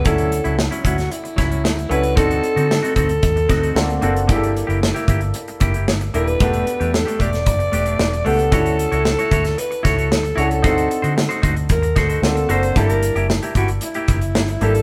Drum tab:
HH |xxxx-xxxxxxx-xxx|xxxx-xxxxxxx-xxx|xxxx-xxxxxxx-xxx|xxxx-xxxxxxx-xox|
SD |----o--o--o-o---|----o-----o-o---|----o-------o---|----o--o----o---|
BD |o-----o---o-----|o-----o-o-o-----|o-----o---o-----|o-----o-o-------|

HH |xxxx-xxxxxxx-xxx|xxxx-xxxxxxx-xxx|xxxx-xxxxxxx-xxx|
SD |----o--o--o-o---|----o-----o-o---|----o-------o---|
BD |o-----o---o-----|o-----o-o-o-----|o-----o---o-----|